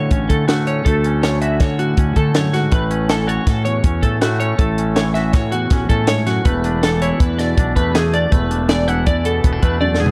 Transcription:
Already playing: D2 A2 D3 A3 C#4 F#4 C#5
0.11 A1 C#4, kick, closed hi-hat
0.29 D3 A3 A4, kick, closed hi-hat
0.48 D2 A3 F#4, snare, closed hi-hat
0.67 C#4 C#5, closed hi-hat
0.85 D2 A3 A4, kick, closed hi-hat
1.04 C#4, closed hi-hat
1.23 D3 C#5, snare, closed hi-hat
1.42 F#4 E5, closed hi-hat
1.60 D3 C#5, kick, snare, closed hi-hat
1.79 A2 F#4, closed hi-hat
1.97 D2 C#4, kick, closed hi-hat
2.16 D3 A3 A4, kick, closed hi-hat
2.35 F#2 C#5, snare, closed hi-hat
2.53 G#2 F#4, snare, closed hi-hat
2.71 A1 A2 A3 B4, kick, closed hi-hat
2.91 C#4, closed hi-hat
3.08 E3 A4, snare, closed hi-hat
3.27 F#4 C#5, closed hi-hat
3.46 A2 A4, kick, snare, closed hi-hat
3.65 E2 C#5, closed hi-hat
3.84 E2 C#4, kick, closed hi-hat
4.02 A2 A3 A4, kick, closed hi-hat
4.21 A2 A3 F#4, snare, closed hi-hat
4.40 C#4 C#5, closed hi-hat
4.58 A1 A2 A3 A4, kick, closed hi-hat
4.78 C#4, closed hi-hat
4.96 E3 C#5, snare, closed hi-hat
5.14 F#4 E5, snare, closed hi-hat
5.33 A2 C#5, kick, snare, closed hi-hat
5.52 E2 F#4, closed hi-hat
5.70 A1 C#4, kick, snare, closed hi-hat
5.89 A2 A3 A4, kick, closed hi-hat
6.07 G#2 C#5, snare, closed hi-hat
6.27 F#2 F#4, snare, closed hi-hat
6.45 E1 E2 A3 B4, kick, closed hi-hat
6.64 D4, closed hi-hat
6.83 E3 A4, snare, closed hi-hat
7.02 E4 C#5, closed hi-hat
7.20 E2 B4, kick, closed hi-hat
7.38 B2 D5, snare, closed hi-hat
7.58 B1 D4, kick, closed hi-hat
7.76 E2 A3 B4, kick, closed hi-hat
7.95 E2 A3 G#4, snare, closed hi-hat
8.13 D4 D5, closed hi-hat
8.31 E1 E2 A3 B4, kick, closed hi-hat
8.51 D4, closed hi-hat
8.68 E3 D5, snare, closed hi-hat
8.88 E4 F#5, closed hi-hat
9.06 E2 D5, kick, closed hi-hat
9.25 B2 A4, closed hi-hat
9.44 E1 B3, kick, closed hi-hat
9.53 D4
9.63 E2 A3 B4, kick, closed hi-hat
9.81 F#2 D5, high tom
9.94 snare
10.00 G#2 G#4
10.06 floor tom

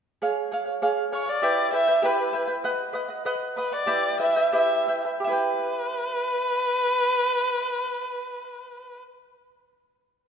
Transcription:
0.22 G#4 C#5 F5
0.52 G#4 C#5 F5
0.66 C#5 F5
0.82 G#4 C#5 F5
1.12 G#4 C#5 F5
1.26 C#5 D5 F5
1.42 E4 G4 B4 E5 G5
1.72 E4 B4 E5 G5
1.87 E4 B4 G5
2.02 E4 G4 B4 E5 G5
2.33 E4 B4 E5 G5
2.47 E4 B4 G5
2.64 B4 D#5 F#5
2.93 B4 D#5 F#5
3.08 D#5 F#5
3.25 B4 D#5 F#5
3.56 B4 D#5 F#5
3.72 D5 D#5 F#5
3.86 E4 G4 B4 E5 G5
4.19 E4 B4 E5 G5
4.36 E4 B4 G5
4.53 E4 G4 B4 E5 G5
4.87 E4 B4 E5 G5
5.05 E4 B4 G5
5.20 G4
5.24 E4 B4 E5
5.29 B4 G5

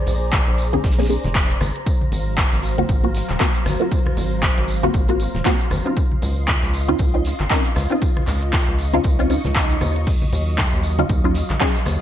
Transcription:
Already playing: A#3 C4 D4 G#4 C5 D5 A#5
0.06 A#1, open hi-hat, tambourine, low conga
0.32 kick, snare, clap, closed hi-hat, tambourine, high conga
0.48 A#1, closed hi-hat
0.58 open hi-hat, tambourine
0.73 A#3 C4 D4 G#4, closed hi-hat, high conga
0.84 A#1, kick, snare, closed hi-hat, tambourine
0.91 snare, tambourine
0.98 A#3 C4 D4 G#4, snare, closed hi-hat, tambourine
1.04 snare, tambourine
1.09 A#3 C4 D4 G#4, open hi-hat, tambourine
1.24 F1, snare, closed hi-hat, high conga, low conga
1.35 kick, snare, clap, closed hi-hat, tambourine
1.50 closed hi-hat
1.61 G#1 F#3 C5 F5, cross-stick, open hi-hat, tambourine, high conga, low conga
1.76 closed hi-hat
1.86 kick, closed hi-hat, tambourine
2.01 high conga
2.12 G#1, open hi-hat, tambourine, low conga
2.37 kick, snare, clap, closed hi-hat, tambourine, high conga
2.53 G#1, snare, closed hi-hat
2.63 open hi-hat, tambourine
2.78 A#3 C4 F4 F#4, closed hi-hat, high conga
2.89 G#1, kick, closed hi-hat, tambourine, low conga
3.04 A#3 C4 F4 F#4, closed hi-hat
3.14 snare, open hi-hat, tambourine
3.29 D#1, clap, closed hi-hat, high conga
3.40 A#3 C4 F4 F#4, kick, snare, clap, closed hi-hat, tambourine
3.55 closed hi-hat
3.66 G#1, cross-stick, snare, open hi-hat, tambourine, high conga
3.80 A#3 C4 F4 F#4, closed hi-hat
3.91 kick, closed hi-hat, tambourine
4.06 cross-stick, high conga
4.17 G#1, open hi-hat, tambourine, low conga
4.42 kick, snare, clap, closed hi-hat, tambourine, high conga
4.58 G#1, closed hi-hat
4.68 open hi-hat, tambourine
4.83 A#3 C4 F4 F#4, closed hi-hat, high conga
4.94 G#1, kick, closed hi-hat, tambourine
5.08 A#3 C4 F4 F#4, closed hi-hat
5.20 open hi-hat, tambourine
5.35 D#1, snare, closed hi-hat, high conga, low conga
5.45 A#3 C4 F4 F#4, kick, snare, clap, closed hi-hat, tambourine
5.61 closed hi-hat
5.70 G#1, cross-stick, open hi-hat, tambourine, high conga, low conga
5.85 C4 C#4 D#4 F4, closed hi-hat
5.96 F4 D#5 C6, kick, closed hi-hat, tambourine
6.11 high conga
6.22 C#2, open hi-hat, tambourine, low conga
6.48 kick, snare, clap, closed hi-hat, tambourine, high conga
6.63 C#2, snare, closed hi-hat
6.74 open hi-hat, tambourine
6.88 C4 C#4 D#4 F4, closed hi-hat, high conga
6.99 C#2, kick, closed hi-hat, tambourine, low conga
7.14 C4 C#4 D#4 F4, closed hi-hat
7.24 snare, open hi-hat, tambourine
7.40 G#1, clap, closed hi-hat, high conga
7.50 C4 C#4 D#4 A#4, kick, snare, clap, closed hi-hat, tambourine
7.65 closed hi-hat
7.76 C#2, cross-stick, snare, open hi-hat, tambourine, high conga
7.90 C4 C#4 D#4 F4, closed hi-hat
8.02 C#6, kick, closed hi-hat, tambourine
8.17 cross-stick, closed hi-hat, high conga
8.27 C#2, clap, open hi-hat, tambourine, low conga
8.42 closed hi-hat
8.52 kick, snare, clap, closed hi-hat, tambourine, high conga
8.68 C#2, closed hi-hat
8.79 open hi-hat, tambourine
8.93 C4 C#4 D#4 F4, closed hi-hat, high conga
9.04 C#2, kick, closed hi-hat, tambourine, swell
9.19 C4 C#4 D#4 F4, closed hi-hat
9.30 C4 C#4 D#4 F4, open hi-hat, tambourine
9.44 C#2, snare, closed hi-hat, high conga, low conga
9.56 kick, snare, clap, closed hi-hat, tambourine
9.70 closed hi-hat
9.81 D#2, cross-stick, open hi-hat, tambourine, high conga, low conga
9.96 closed hi-hat
10.07 F#3 F5, kick, closed hi-hat, tambourine, crash
10.22 high conga
10.33 D#2, open hi-hat, tambourine, low conga
10.58 kick, snare, clap, closed hi-hat, tambourine, high conga
10.73 D#2, snare, closed hi-hat
10.83 open hi-hat, tambourine
10.98 F#3 C#4 D#4 F4, closed hi-hat, high conga
11.09 D#2, kick, closed hi-hat, tambourine, low conga
11.24 F#3 C#4 D#4 F4, closed hi-hat
11.35 snare, open hi-hat, tambourine
11.50 A#1, clap, closed hi-hat, high conga
11.60 F#3 C#4 D#4 G#4, kick, snare, clap, closed hi-hat, tambourine
11.76 closed hi-hat
11.86 D#2, cross-stick, snare, open hi-hat, tambourine, high conga

